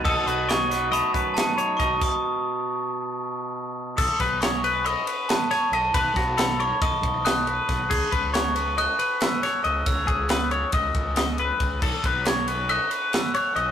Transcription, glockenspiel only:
\new Staff \with { instrumentName = "Glockenspiel" } { \time 9/8 \key b \mixolydian \tempo 4. = 92 dis'''4 cis'''4 b''4 a''4 cis'''8 | dis'''1 r8 | dis'''4 cis'''4 b''4 a''8 a''8 a''8 | b''4 b''8 cis'''8 dis'''4 fis'''4 r8 |
r4 cis'''4 fis'''4 e'''4. | e'''4 dis'''2 r4. | r4 cis'''4 fis'''4 e'''8 fis'''4 | }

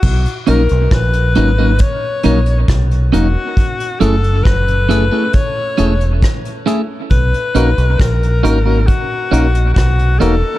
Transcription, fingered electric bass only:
\new Staff \with { instrumentName = "Fingered electric bass" } { \clef bass \time 4/4 \key b \major \tempo 4 = 68 b,,16 r16 ais,,16 b,,16 ais,,8 gis,,8 r8 ais,,8 b,,8 e,,16 r16 | r8 fis,,8 fis,,8. r8. e,,8 r4 | b,,16 r16 ais,,16 b,,16 ais,,8 gis,,8 r8 ais,,8 b,,8 e,,16 r16 | }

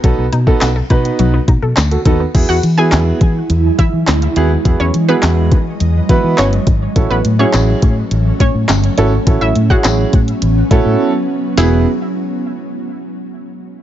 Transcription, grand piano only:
\new Staff \with { instrumentName = "Grand piano" } { \time 4/4 \key e \major \tempo 4 = 104 <b dis' fis' a'>16 r8 <b dis' fis' a'>16 r8 <b dis' fis' b'>8. r4 <fis' a'>16 <b dis' fis' a'>16 r16 | <b e' fis' gis'>16 r8 <b e' fis' gis'>4 r4. r16 <b e' fis' gis'>16 r16 | <b e' fis' gis'>16 r8 <b e' fis' gis'>8. r4 <b e' fis' b'>8. r8. | <cis' e' fis' a'>16 r8 <cis' e' fis' gis'>4 r4. r16 <cis' e' fis' a'>16 r16 |
<cis' e' fis' a'>16 r8 <cis' e' fis' gis'>8. r4 <cis' e' fis' a'>8. r8. | <b e' fis' gis'>8 r2. r8 | }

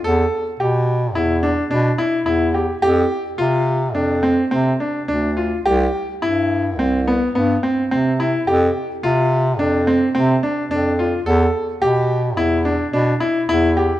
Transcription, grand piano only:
\new Staff \with { instrumentName = "Grand piano" } { \time 5/4 \key f \lydian \tempo 4 = 107 a'4 g'4 e'8 d'8 d'8 e'8 e'8 g'8 | g'4 f'4 d'8 c'8 c'8 d'8 d'8 f'8 | g'4 e'4 c'8 b8 b8 c'8 c'8 e'8 | g'4 f'4 d'8 c'8 c'8 d'8 d'8 f'8 |
a'4 g'4 e'8 d'8 d'8 e'8 e'8 g'8 | }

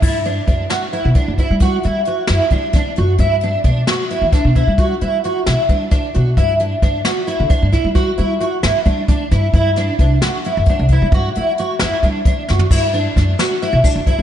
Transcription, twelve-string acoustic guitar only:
\new Staff \with { instrumentName = "Twelve-string acoustic guitar" } { \time 7/8 \key g \major \tempo 4 = 132 e'8 d'8 d'8 fis'8 e'8 d'8 e'8 | fis'8 e'8 fis'8 e'8 d'8 d'8 fis'8 | e'8 d'8 d'8 fis'8 e'8 d'8 e'8 | fis'8 e'8 fis'8 e'8 d'8 d'8 fis'8 |
e'8 d'8 d'8 fis'8 e'8 d'8 e'8 | fis'8 e'8 fis'8 e'8 d'8 d'8 e'8 | e'8 d'8 d'8 fis'8 e'8 d'8 e'8 | fis'8 e'8 fis'8 e'8 d'8 d'8 fis'8 |
e'8 d'8 d'8 fis'8 e'8 d'8 e'8 | }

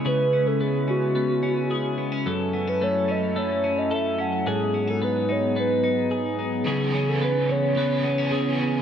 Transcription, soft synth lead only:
\new Staff \with { instrumentName = "Soft synth lead" } { \time 4/4 \key cis \minor \tempo 4 = 109 b'8. a'16 gis'8 fis'2 r8 | a'8. b'16 cis''8 dis''8 cis''8. dis''16 e''8 fis''8 | gis'8. a'16 b'8 cis''8 b'4. r8 | gis'8. a'16 b'8 cis''2 r8 | }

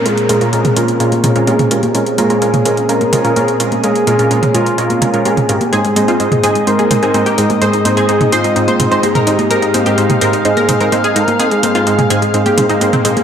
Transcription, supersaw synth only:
\new Staff \with { instrumentName = "Supersaw synth" } { \time 4/4 \key aes \major \tempo 4 = 127 <bes, aes des' f' bes'>16 r16 <bes, aes des' f' bes'>16 <bes, aes des' f' bes'>16 <bes, aes des' f' bes'>16 r16 <bes, aes des' f' bes'>16 r16 <bes, aes des' f' bes'>16 r16 <bes, aes des' f' bes'>16 <bes, aes des' f' bes'>16 <bes, aes des' f' bes'>16 r16 <bes, aes des' f' bes'>16 r16 | <bes, aes des' f' bes'>16 r16 <bes, aes des' f' bes'>16 <bes, aes des' f' bes'>16 <bes, aes des' f' bes'>16 r16 <bes, aes des' f' bes'>16 r16 <bes, aes des' f' bes'>16 r16 <bes, aes des' f' bes'>16 <bes, aes des' f' bes'>16 <bes, aes des' f' bes'>16 r16 <bes, aes des' f' bes'>16 r16 | <bes, aes des' f' bes'>16 r16 <bes, aes des' f' bes'>16 <bes, aes des' f' bes'>16 <bes, aes des' f' bes'>16 r16 <bes, aes des' f' bes'>16 r16 <bes, aes des' f' bes'>16 r16 <bes, aes des' f' bes'>16 <bes, aes des' f' bes'>16 <bes, aes des' f' bes'>16 r16 <aes, aes des' f' bes'>16 r16 | <aes, aes c' ees' c''>16 r16 <aes, aes c' ees' c''>16 <aes, aes c' ees' c''>16 <aes, aes c' ees' c''>16 r16 <aes, aes c' ees' c''>16 r16 <aes, aes c' ees' c''>16 r16 <aes, aes c' ees' c''>16 <aes, aes c' ees' c''>16 <aes, aes c' ees' c''>16 r16 <aes, aes c' ees' c''>16 r16 |
<aes, aes c' ees' c''>16 r16 <aes, aes c' ees' c''>16 <aes, aes c' ees' c''>16 <aes, aes c' ees' c''>16 r16 <aes, aes c' ees' c''>16 r16 <aes, aes c' ees' c''>16 r16 <aes, aes c' ees' c''>16 <aes, aes c' ees' c''>16 <aes, aes c' ees' c''>16 r16 <aes, aes c' ees' c''>16 r16 | <aes, aes c' ees' c''>16 r16 <aes, aes c' ees' c''>16 <aes, aes c' ees' c''>16 <aes, aes c' ees' c''>16 r16 <aes, aes c' ees' c''>16 r16 <aes, aes c' ees' c''>16 r16 <aes, aes c' ees' c''>16 <aes, aes c' ees' c''>16 <aes, aes c' ees' c''>16 r16 <aes, aes c' ees' c''>16 r16 | <aes, aes c' ees' c''>16 r16 <aes, aes c' ees' c''>16 <aes, aes c' ees' c''>16 <aes, aes c' ees' c''>16 r16 <aes, aes c' ees' c''>16 r16 <aes, aes c' ees' c''>16 r16 <aes, aes c' ees' c''>16 <aes, aes c' ees' c''>16 <aes, aes c' ees' c''>16 r16 <bes, aes c' ees' c''>16 r16 | }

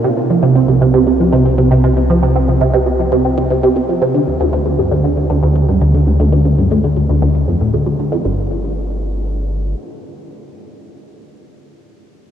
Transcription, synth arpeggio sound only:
\new Staff \with { instrumentName = "Synth arpeggio sound" } { \clef bass \time 4/4 \key c \dorian \tempo 4 = 117 c16 c16 f16 c16 c'16 c16 c16 c16 c16 f16 c16 c'16 c16 c16 c16 c16 | f16 c16 c'16 c16 c16 c16 c16 f16 c16 c'16 c16 c16 c16 c16 f16 c16 | d16 d,16 d,16 d,16 d,16 g,16 d,16 d16 d,16 d,16 d,16 d,16 g,16 d,16 d16 d,16 | d,16 d,16 d,16 g,16 d,16 d16 d,16 d,16 d,16 d,16 f,16 a,16 d,16 d,16 d16 f,16 |
g,8 r2. r8 | r1 | }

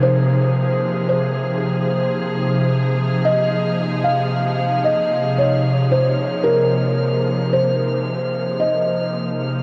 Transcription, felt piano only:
\new Staff \with { instrumentName = "Felt piano" } { \time 3/4 \key f \minor \tempo 4 = 56 c''4 c''4. r8 | ees''8. f''8. ees''8 des''8 c''8 | bes'4 c''4 ees''4 | }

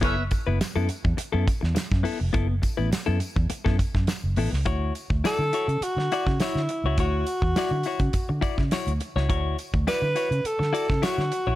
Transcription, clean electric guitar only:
\new Staff \with { instrumentName = "Clean electric guitar" } { \time 4/4 \key d \lydian \tempo 4 = 104 <b e' a'>16 r8 <b e' b'>16 r16 <b e' a'>16 r8. <b e' a'>16 r4 <b e' a'>16 r16 | <b e' a'>16 r8 <b e' b'>16 r16 <b e' a'>16 r8. <b e' a'>16 r4 <b e' a'>16 r16 | <e' fis' cis''>8 r8 <e' fis' d''>16 r16 <e' fis' cis''>16 r8. <e' fis' d''>16 r16 <e' fis' cis''>16 r8 <e' fis' cis''>16 | <e' fis' cis''>8 r8 <e' fis' d''>16 r16 <e' fis' cis''>16 r8. <e' fis' d''>16 r16 <e' fis' cis''>16 r8 <e' fis' cis''>16 |
<e' fis' cis''>8 r8 <e' fis' d''>16 r16 <e' fis' cis''>16 r8. <e' fis' d''>16 r16 <e' fis' cis''>16 r8 <e' fis' cis''>16 | }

